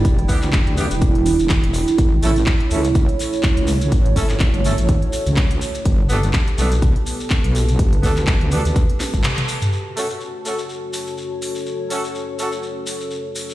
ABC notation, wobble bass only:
X:1
M:4/4
L:1/16
Q:"Swing 16ths" 1/4=124
K:F#phr
V:1 name="Wobble bass" clef=bass
E,,,2 D,,2 E,,, D,,2 E,,,4 E,,,2 E,,,2 z | A,,,2 A,,,2 z2 C,,3 z4 C,,3 | A,,,2 G,,,2 A,,, G,,,2 A,,,2 z2 C,,3 z2 | G,,,2 G,,,2 z2 B,,,3 z4 B,,,3 |
G,,,2 D,,2 G,,, D,,2 D,,2 z2 G,,, z4 | z16 | z16 |]